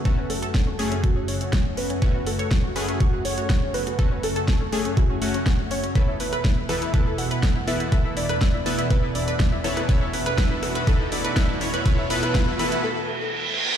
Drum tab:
HH |x-oxx-oxx-oxx-ox|x-oxx-oxx-oxx-ox|x-oxx-oxx-oxx-ox|x-oxx-oxx-oxx-ox|
SD |----o-------o---|----o-------o---|----o-------o---|---ro-r-----o---|
BD |o---o---o---o---|o---o---o---o---|o---o---o---o---|o---o---o---o---|

HH |x-oxx-oxx-oxx-ox|x-oxx-oxx-oxx-ox|x-oxx-ox--------|
SD |---ro-------o--r|---ro-r-----o---|---ro-r---------|
BD |o---o---o---o---|o---o---o---o---|o---o-----------|